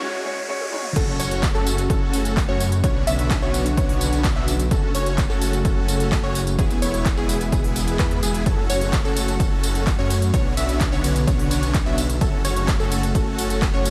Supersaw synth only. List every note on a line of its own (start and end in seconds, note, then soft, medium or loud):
0.96 1.16 C#4 medium
0.96 1.16 F#4 medium
0.96 1.16 A4 loud
1.20 1.44 C#4 loud
1.20 1.44 F#4 medium
1.20 1.44 C#5 loud
1.55 1.80 C#4 medium
1.55 1.80 F#4 medium
1.55 1.80 A4 medium
1.90 2.34 C#4 medium
1.90 2.34 F#4 medium
1.90 2.34 A4 medium
2.49 2.64 C#4 medium
2.49 2.64 F#4 medium
2.49 2.64 C#5 loud
2.84 3.04 B3 medium
2.84 3.04 C#4 medium
2.84 3.04 D4 medium
2.84 3.04 F#4 medium
2.84 3.04 C#5 loud
3.07 3.32 B3 loud
3.07 3.32 C#4 medium
3.07 3.32 D4 medium
3.07 3.32 F#4 medium
3.07 3.32 E5 loud
3.42 3.67 B3 medium
3.42 3.67 C#4 medium
3.42 3.67 D4 medium
3.42 3.67 F#4 medium
3.42 3.67 C#5 medium
3.77 4.22 B3 medium
3.77 4.22 C#4 medium
3.77 4.22 D4 medium
3.77 4.21 F#4 medium
3.77 4.22 C#5 medium
4.36 4.52 B3 medium
4.36 4.52 C#4 medium
4.36 4.52 D4 medium
4.36 4.52 F#4 medium
4.36 4.52 E5 loud
4.71 4.91 C#4 medium
4.71 4.91 F#4 medium
4.71 4.91 A4 loud
4.95 5.19 C#4 loud
4.95 5.19 F#4 medium
4.95 5.19 C#5 loud
5.30 5.55 C#4 medium
5.30 5.55 F#4 medium
5.30 5.55 A4 medium
5.65 6.09 C#4 medium
5.65 6.09 F#4 medium
5.65 6.09 A4 medium
6.24 6.39 C#4 medium
6.24 6.39 F#4 medium
6.24 6.39 C#5 loud
6.59 6.79 B3 medium
6.59 6.79 E4 medium
6.59 6.79 G#4 loud
6.82 7.07 B3 loud
6.82 7.07 E4 medium
6.82 7.07 C#5 loud
7.17 7.42 B3 medium
7.17 7.42 E4 medium
7.17 7.42 G#4 medium
7.53 7.97 B3 medium
7.53 7.97 E4 medium
7.53 7.97 G#4 medium
7.99 8.20 B3 medium
7.99 8.20 E4 medium
7.99 8.20 B4 medium
8.23 8.43 B3 medium
8.23 8.43 E4 medium
8.23 8.43 G#4 medium
8.46 8.66 C#4 medium
8.46 8.66 F#4 medium
8.46 8.66 A4 loud
8.70 8.94 C#4 loud
8.70 8.94 F#4 medium
8.70 8.94 C#5 loud
9.05 9.30 C#4 medium
9.05 9.30 F#4 medium
9.05 9.30 A4 medium
9.40 9.84 C#4 medium
9.40 9.84 F#4 medium
9.40 9.84 A4 medium
9.99 10.14 C#4 medium
9.99 10.14 F#4 medium
9.99 10.14 C#5 loud
10.34 10.54 B3 medium
10.34 10.54 C#4 medium
10.34 10.54 D4 medium
10.34 10.54 F#4 medium
10.34 10.54 C#5 loud
10.57 10.82 B3 loud
10.57 10.82 C#4 medium
10.57 10.82 D4 medium
10.57 10.82 F#4 medium
10.57 10.82 E5 loud
10.92 11.17 B3 medium
10.92 11.17 C#4 medium
10.92 11.17 D4 medium
10.92 11.17 F#4 medium
10.92 11.17 C#5 medium
11.28 11.72 B3 medium
11.28 11.72 C#4 medium
11.28 11.72 D4 medium
11.28 11.72 F#4 medium
11.28 11.72 C#5 medium
11.86 12.02 B3 medium
11.86 12.02 C#4 medium
11.86 12.02 D4 medium
11.86 12.02 F#4 medium
11.86 12.02 E5 loud
12.21 12.41 C#4 medium
12.21 12.41 F#4 medium
12.21 12.41 A4 loud
12.45 12.69 C#4 loud
12.45 12.69 F#4 medium
12.45 12.69 C#5 loud
12.80 13.05 C#4 medium
12.80 13.05 F#4 medium
12.80 13.05 A4 medium
13.15 13.59 C#4 medium
13.15 13.59 F#4 medium
13.15 13.59 A4 medium
13.74 13.89 C#4 medium
13.74 13.89 F#4 medium
13.74 13.89 C#5 loud